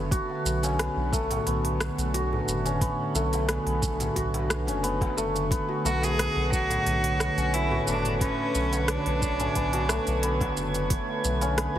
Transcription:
Already playing: analog synth bass F#1, analog synth pad D3 A3 F#4 B4, santur A3 B3 C#4 F#4
0.11 santur F#4, kick, open hi-hat, shaker
0.30 darbuka ka, darbuka tek
0.45 analog synth bass B1, darbuka tek, shaker
0.63 santur C#4, open hi-hat, darbuka tek, shaker
0.79 santur B3, cross-stick, open hi-hat, shaker
0.96 analog synth bass B1
1.13 santur A3, kick, shaker
1.31 open hi-hat, darbuka ka, darbuka dum, shaker
1.46 analog synth bass B1, santur B3, open hi-hat, shaker
1.65 open hi-hat, darbuka ka
1.80 cross-stick, shaker
1.98 analog synth bass B1, open hi-hat, shaker
2.14 santur F#4, open hi-hat, shaker
2.33 darbuka dum
2.48 analog synth bass F#1, shaker
2.65 santur C#4, open hi-hat, darbuka dum, shaker
2.81 santur B3, kick, open hi-hat, shaker
3.00 darbuka ka
3.15 analog synth bass B1, santur A3, darbuka tek, shaker
3.33 open hi-hat, darbuka tek, shaker
3.48 santur B3, cross-stick, open hi-hat, shaker
3.66 analog synth bass B1, open hi-hat
3.82 kick, shaker
4.00 open hi-hat, darbuka ka, darbuka dum, shaker
4.16 analog synth bass B1, santur F#4, kick, open hi-hat, shaker
4.34 open hi-hat, darbuka tek
4.50 cross-stick, shaker
4.67 analog synth bass F#1, santur C#4, open hi-hat, darbuka ka, shaker
4.83 santur B3, open hi-hat, shaker
5.01 kick, open hi-hat, darbuka tek
5.17 analog synth bass F#1, santur A3, darbuka ka, shaker
5.35 open hi-hat, darbuka ka, shaker
5.51 santur B3, synth texture C#5, kick, open hi-hat, shaker
5.69 santur F#4, darbuka ka, darbuka tek
5.84 analog synth bass B1, santur A3, cello F#4, darbuka tek, shaker
6.02 cello G#4, open hi-hat, darbuka tek, shaker
6.19 santur B3, cross-stick, open hi-hat, shaker
6.36 analog synth bass B1
6.52 cello F#4, kick, shaker
6.70 open hi-hat, darbuka ka, darbuka dum, shaker
6.86 analog synth bass B1, open hi-hat, shaker
7.04 open hi-hat, darbuka ka
7.20 cross-stick, shaker
7.37 analog synth bass B1, santur C#4, open hi-hat, shaker
7.53 santur B3, cello E4, open hi-hat, shaker
7.71 santur F#4, darbuka dum
7.87 analog synth bass F#1, santur A3, cello D4, shaker
8.05 open hi-hat, darbuka dum, shaker
8.21 santur B3, cello C#4, kick, open hi-hat, shaker
8.38 darbuka ka
8.55 analog synth bass B1, darbuka tek, shaker
8.72 open hi-hat, darbuka tek, shaker
8.88 cello D4, cross-stick, open hi-hat, shaker
9.06 analog synth bass B1, open hi-hat
9.22 kick, shaker
9.40 santur C#4, open hi-hat, darbuka ka, darbuka dum, shaker
9.55 analog synth bass B1, santur B3, kick, open hi-hat, shaker
9.73 santur F#4, open hi-hat, darbuka tek
9.89 santur A3, cross-stick, shaker
10.07 analog synth bass B1, open hi-hat, darbuka ka, shaker
10.23 santur B3, open hi-hat, shaker
10.40 kick, open hi-hat, darbuka tek
10.57 analog synth bass F#1, darbuka ka, shaker
10.74 open hi-hat, darbuka ka, shaker
10.90 kick, open hi-hat, shaker
11.08 darbuka ka, darbuka tek
11.24 analog synth bass B1, darbuka tek, shaker
11.41 santur C#4, open hi-hat, darbuka tek, shaker
11.58 santur B3, cross-stick, open hi-hat, shaker
11.76 analog synth bass B1

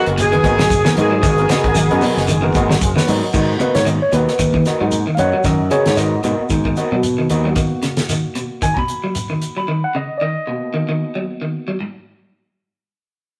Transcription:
0.06 fingered electric bass F#1, closed hi-hat
0.18 horn section G#4, alto saxophone G#4, muted clean electric guitar stroke, closed hi-hat, high conga, shekere
0.31 clean electric guitar D#3, tine electric piano B3 F#4 B4, closed hi-hat
0.43 fingered electric bass G#1, clean electric guitar B3 F#4 A#4 D#5, kick, closed hi-hat, high conga, shekere
0.58 clean electric guitar F#3, snare, closed hi-hat
0.70 fingered electric bass F#1, kick, closed hi-hat, low conga, shekere
0.84 clean electric guitar D#3, tine electric piano B3 F#4 A#4, snare, high conga
0.96 fingered electric bass G#2, clean electric guitar B3 A#4 D#5, closed hi-hat, high conga, low conga, shekere
1.01 horn section G#4, alto saxophone G#4
1.11 clean electric guitar F#3
1.23 fingered electric bass G#1, clean electric guitar D#3, kick, closed hi-hat, shekere
1.37 tine electric piano B3 F#4 A#4, closed hi-hat
1.49 clean electric guitar C#3 B3 F#4 A#4 D#5, trombone section B3, snare, closed hi-hat, high conga, shekere
1.64 fingered electric bass G#1, clean electric guitar F#4 A#4, kick, closed hi-hat
1.75 clean electric guitar D#3, trombone section B3, closed hi-hat, low conga, shekere
1.89 fingered electric bass F#2, tine electric piano B3 F#4 A#4, clean electric guitar F#4 A#4 D#5, closed hi-hat
2.01 clean electric guitar B2 B3 F#4 A#4 D#5, open hi-hat, high conga, low conga, shekere
2.17 fingered electric bass F#1, snare
2.28 clean electric guitar D#3, trombone section G#3, closed hi-hat, high conga, shekere
2.42 clean electric guitar D#3, tine electric piano B3 F#4 A#4
2.54 fingered electric bass G#1, clean electric guitar B3 F#4 A#4 D#5, kick, closed hi-hat, high conga, shekere
2.70 clean electric guitar F#3, snare
2.81 fingered electric bass F#1, trombone section G#3, kick, closed hi-hat, low conga, shekere
2.95 clean electric guitar D#3, trombone section F#3, tine electric piano B3 F#4 B4, snare, high conga
3.07 fingered electric bass G#2, clean electric guitar B3 F#4 A#4 D#5, open hi-hat, low conga, shekere
3.34 fingered electric bass G#2, clean electric guitar D#3 B3 F#4 A#4 D#5, kick, crash, shekere
3.59 clean electric guitar C#3 B3 F#4 A#4 D#5, tine electric piano A#3 B3 F#4 B4, muted fingered electric bass stroke, closed hi-hat, high conga, shekere
3.75 fingered electric bass G#2, tine electric piano C#5, snare, closed hi-hat
3.85 clean electric guitar D#3, tine electric piano D#5, closed hi-hat, shekere
4.02 tine electric piano C#5
4.12 fingered electric bass D#2, clean electric guitar B2 B3 F#4 A#4 D#5, tine electric piano B4, closed hi-hat, high conga, shekere
4.28 muted fingered electric bass stroke, snare
4.39 fingered electric bass D#2, clean electric guitar D#3, kick, closed hi-hat, high conga, shekere
4.53 clean electric guitar D#3, kick, high conga
4.65 clean electric guitar B3 F#4 A#4 D#5, snare, closed hi-hat, shekere
4.81 fingered electric bass G#2, clean electric guitar F#3 F#4 A#4 D#5
4.91 closed hi-hat, high conga, shekere
5.07 clean electric guitar D#3
5.15 fingered electric bass F#2, clean electric guitar B3 F#4 A#4, tine electric piano C#5 F5, closed hi-hat, high conga, shekere
5.19 clean electric guitar D#5, tine electric piano F#5
5.33 clean electric guitar F#3
5.44 fingered electric bass F#2, clean electric guitar D#3, tine electric piano A#4 D#5, kick, snare, closed hi-hat, shekere
5.70 clean electric guitar C#3 B3 F#4 A#4 D#5, tine electric piano G#4 C#5, closed hi-hat, shekere
5.86 fingered electric bass G#2, snare, closed hi-hat
5.97 clean electric guitar D#3 B3 F#4 A#4 D#5, tine electric piano D#5, snare, closed hi-hat, shekere
6.23 fingered electric bass G#2, clean electric guitar B2 B3 F#4 A#4 D#5, tine electric piano A#3 B3 F#4, closed hi-hat, shekere
6.40 muted fingered electric bass stroke
6.49 fingered electric bass G#2, clean electric guitar D#3, kick, closed hi-hat, shekere
6.65 clean electric guitar D#3, kick
6.77 clean electric guitar F#4 A#4 D#5, closed hi-hat, shekere
6.92 fingered electric bass B2, clean electric guitar F#3
7.03 closed hi-hat, shekere
7.18 clean electric guitar D#3
7.30 fingered electric bass D#2, clean electric guitar B3 F#4 A#4 D#5, closed hi-hat, shekere
7.45 clean electric guitar F#3
7.56 clean electric guitar D#3, tine electric piano A#3 B3 F#4, kick, closed hi-hat, shekere
7.83 clean electric guitar C#3, snare, closed hi-hat, shekere
7.97 snare, closed hi-hat
8.09 clean electric guitar D#3, snare, closed hi-hat, shekere
8.35 clean electric guitar B2, closed hi-hat, shekere
8.62 clean electric guitar D#3, tine electric piano G#5, kick, closed hi-hat, shekere
8.74 clean electric guitar B2, tine electric piano A#5, kick
8.79 tine electric piano B5
8.88 closed hi-hat, shekere
9.04 clean electric guitar F#3
9.15 closed hi-hat, shekere
9.30 clean electric guitar D#3
9.42 closed hi-hat, shekere
9.57 clean electric guitar F#3, tine electric piano B5
9.68 clean electric guitar D#3
9.84 tine electric piano F#5
9.95 clean electric guitar C#3, tine electric piano D#5
10.18 clean electric guitar D#3, tine electric piano D5
10.22 tine electric piano D#5
10.47 clean electric guitar B2, tine electric piano A#3 B3 F#4
10.74 clean electric guitar D#3
10.89 clean electric guitar D#3
11.15 clean electric guitar F#3
11.42 clean electric guitar D#3
11.68 clean electric guitar F#3
11.81 clean electric guitar G#2

